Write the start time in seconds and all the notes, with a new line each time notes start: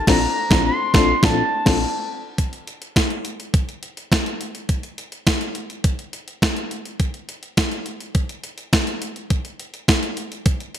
Already playing: A3
0.07 A#1 C3 C4 D4 F4 A4 A#5, kick, snare, crash
0.50 A#1 C4 D4 F4, kick, snare
0.66 C6
0.93 A#1 C4 D4 F4 A4, kick, snare
1.22 A#1 C4 D4 F4 A4 A5, kick, snare
1.66 A#1 C4 D4 F4 A4, kick, snare, crash
2.38 kick, closed hi-hat
2.53 closed hi-hat
2.67 closed hi-hat
2.82 closed hi-hat
2.96 kick, snare, closed hi-hat
3.10 closed hi-hat
3.25 closed hi-hat
3.40 closed hi-hat
3.54 kick, closed hi-hat
3.69 closed hi-hat
3.83 closed hi-hat
3.97 closed hi-hat
4.12 kick, snare, closed hi-hat
4.26 closed hi-hat
4.41 closed hi-hat
4.55 closed hi-hat
4.69 kick, closed hi-hat
4.83 closed hi-hat
4.98 closed hi-hat
5.12 closed hi-hat
5.27 kick, snare, closed hi-hat
5.41 closed hi-hat
5.55 closed hi-hat
5.70 closed hi-hat
5.84 kick, closed hi-hat
5.99 closed hi-hat
6.13 closed hi-hat
6.28 closed hi-hat
6.42 kick, snare, closed hi-hat
6.56 closed hi-hat
6.71 closed hi-hat
6.85 closed hi-hat
7.00 kick, closed hi-hat
7.14 closed hi-hat
7.29 closed hi-hat
7.43 closed hi-hat
7.57 kick, snare, closed hi-hat
7.71 closed hi-hat
7.86 closed hi-hat
8.00 closed hi-hat
8.15 kick, closed hi-hat
8.29 closed hi-hat
8.44 closed hi-hat
8.58 closed hi-hat
8.73 kick, snare, closed hi-hat
8.87 closed hi-hat
9.02 closed hi-hat
9.16 closed hi-hat
9.30 kick, closed hi-hat
9.45 closed hi-hat
9.60 closed hi-hat
9.74 closed hi-hat
9.88 kick, snare, closed hi-hat
10.03 closed hi-hat
10.17 closed hi-hat
10.32 closed hi-hat
10.46 kick, closed hi-hat
10.60 closed hi-hat
10.75 closed hi-hat